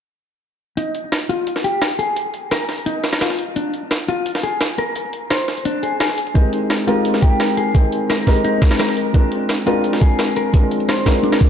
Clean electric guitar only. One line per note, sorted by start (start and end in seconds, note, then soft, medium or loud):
0.77 0.93 D#4 medium
1.29 1.46 F4 medium
1.64 1.80 G4 medium
1.99 2.15 G#4 medium
2.51 2.68 A#4 medium
2.86 3.03 D#4 medium
3.21 3.37 F4 medium
3.56 3.72 D4 medium
4.08 4.25 F4 medium
4.43 4.59 G#4 medium
4.78 4.94 A#4 medium
5.31 5.47 C5 medium
5.65 5.82 D4 medium
5.83 5.93 G#4 medium
6.00 6.17 G#4 medium
6.35 6.51 D#4 medium
6.87 7.04 F4 medium
7.22 7.38 G4 medium
7.57 7.73 G#4 medium
8.10 8.26 A#4 medium
8.45 8.61 D#4 medium
8.80 8.95 A#4 medium
9.15 9.30 D4 medium
9.67 9.83 F4 medium
10.01 10.17 G#4 medium
10.37 10.52 A#4 medium
10.89 11.05 C5 medium
11.23 11.40 D4 medium